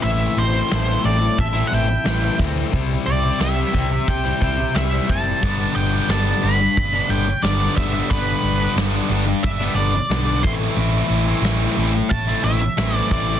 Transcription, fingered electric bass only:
X:1
M:4/4
L:1/8
Q:1/4=90
K:Am
V:1 name="Fingered electric bass" clef=bass
A,,, A,,, A,,, A,,, A,,, A,,, A,,, D,, | C,, C,, C,, C,, C,, C,, C,, ^F,,, | G,,, G,,, G,,, G,,, G,,, G,,, G,,, G,,, | G,,, G,,, G,,, G,,, G,,, G,,, B,,, A,,, |
A,,, A,,, A,,, A,,, A,,, A,,, A,,, A,,, |]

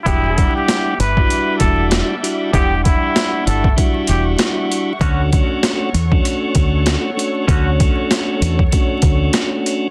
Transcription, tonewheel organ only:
X:1
M:4/4
L:1/16
Q:"Swing 16ths" 1/4=97
K:Edor
V:1 name="Tonewheel organ"
[G,DEF]2 [G,DEf]4 z [G,DEF]6 z [G,DEF]2 | [G,DEf]6- [G,DEf] z [G,DEF]6- [G,DEF] z | [A,CDF]2 [A,CDF]4 z [A,CDF]6 z [A,CDF]2 | [A,CDF]6- [A,CDF] z [A,CDF]6- [A,CDF] z |]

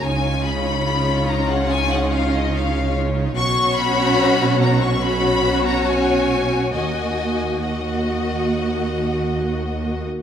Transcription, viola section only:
X:1
M:4/4
L:1/16
Q:1/4=70
K:D#m
V:1 name="Viola section"
[CD]16 | [CF]8 [CF]8 | [A,F]4 [A,F]8- [A,F]3 z |]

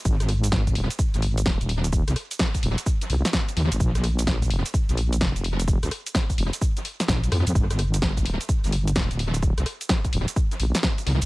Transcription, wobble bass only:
X:1
M:4/4
L:1/16
Q:"Swing 16ths" 1/4=128
K:Gm
V:1 name="Wobble bass" clef=bass
_A,,,6 E,,, z2 A,,,3 E,,, E,,,3- | E,,, C,, z4 E,,, z3 C,, z3 E,, _A,,, | B,,,6 F,,, z2 B,,,3 F,,, F,,,3- | F,,, D,, z4 F,,, z4 z B,,,2 F,, F,, |
G,,,6 D,,, z2 G,,,3 D,,, D,,,3- | D,,, C,, z4 D,,, z3 B,,, z3 C,, C,, |]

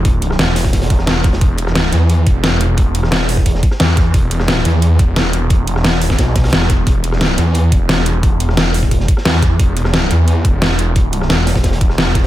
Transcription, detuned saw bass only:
X:1
M:4/4
L:1/8
Q:1/4=176
K:Clyd
V:1 name="Detuned saw bass" clef=bass
E,,,2 E,,,2 E,,, E,,,3 | E,,,3 E,,2 E,,,3- | E,,,4- E,,, z E,,2 | E,,,3 E,,2 E,,, E,,,2- |
E,,, E,,,3 B,,,2 E,,,2 | E,,,3 E,,2 E,,,3- | E,,,4- E,,, z E,,2 | E,,,3 E,,2 E,,,3- |
E,,,2 E,,,2 E,,, E,,,3 |]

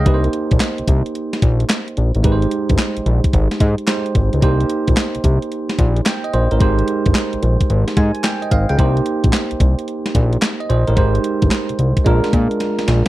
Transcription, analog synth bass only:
X:1
M:4/4
L:1/16
Q:"Swing 16ths" 1/4=110
K:Cm
V:1 name="Analog synth bass" clef=bass
C,,2 z B,,, z C,, C,, z3 B,,,2 z2 B,,, =A,,, | A,,,2 z G,,, z B,,, B,,, z A,,, z A,, z3 A,,, _D,, | C,,2 z B,,, z C,, C,, z3 B,,,2 z2 B,,, =A,,, | A,,,2 z G,,, z B,,, B,,, z A,,, z A,, z3 A,,, _D,, |
C,,2 z B,,, z C,, C,, z3 B,,,2 z2 B,,, =A,,, | A,,,2 z G,,, z C,, C,, z B,,, z B,, z3 B,,, z |]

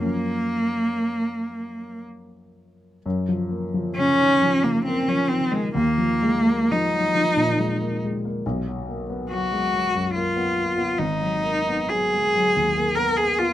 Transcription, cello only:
X:1
M:3/4
L:1/16
Q:1/4=68
K:Gb
V:1 name="Cello"
B,8 z4 | z4 D3 B, =C D C A, | B,4 E6 z2 | z4 G4 F4 |
E4 A4- A B A F |]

